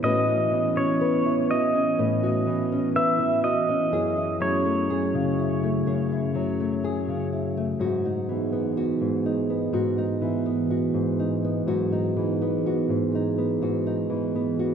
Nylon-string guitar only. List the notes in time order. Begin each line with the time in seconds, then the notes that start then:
0.02 A2 E3 C#4 F#4 B4
0.27 F#4
0.51 E3
0.77 C#4
1.01 B4
1.24 E3
1.51 F#4
1.75 C#4
1.98 A2 B4
2.23 F#4
2.46 E3
2.72 C#4
2.96 B4
3.19 E3
3.44 F#4
3.69 C#4
3.92 F#2 G#4
4.16 E4
4.40 F#3
4.65 A3
4.90 G#4
5.14 C#3
5.39 E4
5.63 A3
5.86 F#2 G#4
6.12 E4
6.35 F#3
6.60 A3
6.84 G#4
7.08 C#3
7.33 E4
7.57 A3
7.80 G#2 F#4
8.05 D#4
8.29 E3
8.53 B3
8.77 F#4
9.01 G#2
9.26 D#4
9.50 B3
9.73 G#2 F#4
9.98 D#4
10.21 E3
10.46 B3
10.71 F#4
10.94 G#2
11.19 D#4
11.44 B3
11.67 G#2 F#4
11.92 D#4
12.17 E3
12.42 B3
12.66 F#4
12.89 G#2
13.15 D#4
13.38 B3
13.62 G#2 F#4
13.87 D#4
14.10 E3
14.35 B3
14.59 F#4